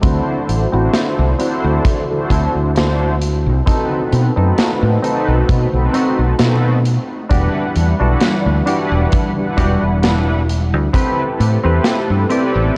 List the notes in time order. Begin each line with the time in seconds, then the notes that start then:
0.02 D2 D3 C4 D4 E4 F#4 A4 C5, kick, closed hi-hat
0.49 A1, closed hi-hat
0.72 A1 C4 D4 E4 F#4 A4 C5
0.94 snare, closed hi-hat
1.19 C2
1.39 C4 D4 E4 F#4 A4 C5, closed hi-hat
1.64 D2
1.85 kick, closed hi-hat
2.09 D4 E4 F#4 A4 C5
2.30 D2 C4 E4 A4, kick, closed hi-hat
2.55 D2
2.75 D4 E4 F#4 A4 C5, muted clean electric guitar stroke, snare, closed hi-hat
3.00 muted clean electric guitar stroke
3.21 closed hi-hat
3.46 C2
3.66 A3 C4 D#4 F#4 A4 B4, kick, closed hi-hat
4.12 B2, closed hi-hat
4.36 F#2 C4 D#4 F#4 A4 B4
4.58 snare, closed hi-hat
4.83 A2
5.02 C4 D#4 F#4 A4 B4, closed hi-hat
5.28 B1
5.49 B2 C4, kick, closed hi-hat
5.73 B1 C4 D#4 F#4 A4 B4
5.93 C4 D#4 F#4, closed hi-hat
6.19 B1
6.39 B2 C4 D#4 F#4 A4 B4, muted clean electric guitar stroke, snare, closed hi-hat
6.63 muted clean electric guitar stroke
6.85 closed hi-hat
7.29 E1 E3 G3 D4 E4 F#4 G4 B4 F#5, kick, closed hi-hat
7.76 E2, closed hi-hat
8.00 B1 G3 D4 E4 F#4 A4 B4 F#5
8.21 snare, closed hi-hat
8.46 D2
8.66 G3 D4 E4 F#4 G4 B4 F#5, closed hi-hat
8.92 E1
9.12 E4, kick, closed hi-hat
9.37 G3 D4 E4 B4 F#5
9.57 E1 D4 F#4 G4, kick, closed hi-hat
9.83 E1
10.02 G3 D4 E4 B4 F#5, muted clean electric guitar stroke, snare, closed hi-hat
10.27 muted clean electric guitar stroke
10.49 closed hi-hat
10.74 D2
10.93 A3 C4 E4 G4 A4 B4, kick, closed hi-hat
11.40 A2, closed hi-hat
11.63 E2 C4 E4 G4 A4 B4
11.84 snare, closed hi-hat
12.10 G2
12.30 C4 E4 G4 A4 B4 D5, closed hi-hat
12.55 A1